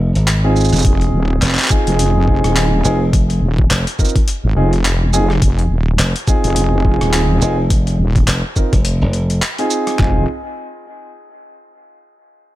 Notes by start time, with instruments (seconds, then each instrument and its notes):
Already playing: slap bass F1
0.15 slap bass G#1, closed hi-hat
0.27 clap, closed hi-hat
0.44 grand piano C4 D#4 F4 G#4
0.56 shaker
0.60 shaker
0.64 shaker
0.69 wobble bass F1, shaker
0.73 cross-stick, shaker
0.76 shaker
0.79 shaker
0.82 wobble bass F1, kick, closed hi-hat, shaker
1.01 closed hi-hat
1.13 wobble bass D#1
1.42 slap bass F1, clap, closed hi-hat
1.46 clap
1.50 clap
1.54 clap
1.59 clap, closed hi-hat
1.61 clap
1.64 clap
1.67 grand piano C4 D#4 F4 G#4, kick, clap, shaker
1.87 wobble bass F1, closed hi-hat
1.99 closed hi-hat
2.28 grand piano C4 D#4 F4 G#4, kick
2.44 wobble bass D#1, cross-stick, closed hi-hat
2.56 clap, closed hi-hat
2.85 slap bass F1, grand piano C4 D#4 F4 G#4, shaker
3.13 kick, closed hi-hat
3.30 closed hi-hat
3.42 wobble bass D#1
3.58 kick
3.71 slap bass F1, clap, closed hi-hat
3.87 closed hi-hat
3.99 grand piano C4 D#4 F4 A#4, kick, shaker
4.05 shaker
4.09 shaker
4.16 kick, closed hi-hat
4.28 closed hi-hat
4.44 wobble bass G#1
4.56 wobble bass F1, grand piano C4 D#4 F4 G#4
4.73 closed hi-hat
4.85 clap, closed hi-hat
5.13 grand piano C4 D#4 F4 G#4, shaker
5.30 cross-stick
5.42 wobble bass F1, kick, closed hi-hat
5.59 closed hi-hat
5.70 wobble bass D#1
5.99 slap bass F1, clap, closed hi-hat
6.16 closed hi-hat
6.28 grand piano C4 D#4 F4 G#4, kick, shaker
6.44 wobble bass F1, closed hi-hat
6.56 closed hi-hat
6.85 grand piano C4 D#4 F4 G#4, kick
7.01 wobble bass D#1, cross-stick, closed hi-hat
7.13 clap, closed hi-hat
7.42 slap bass F1, grand piano C4 D#4 F4 G#4, shaker
7.70 kick, closed hi-hat
7.87 closed hi-hat
7.99 wobble bass D#1
8.16 kick, closed hi-hat
8.28 slap bass F1, clap, closed hi-hat
8.56 grand piano C4 D#4 F4 A#4, kick, shaker
8.73 slap bass F1, kick, closed hi-hat
8.85 closed hi-hat
9.02 slap bass F1
9.13 closed hi-hat
9.30 closed hi-hat
9.42 clap, closed hi-hat
9.58 grand piano C4 D#4 F4 G#4, closed hi-hat
9.70 shaker
9.87 cross-stick, closed hi-hat
9.99 wobble bass F1, grand piano C4 D#4 F4 G#4, kick, clap, floor tom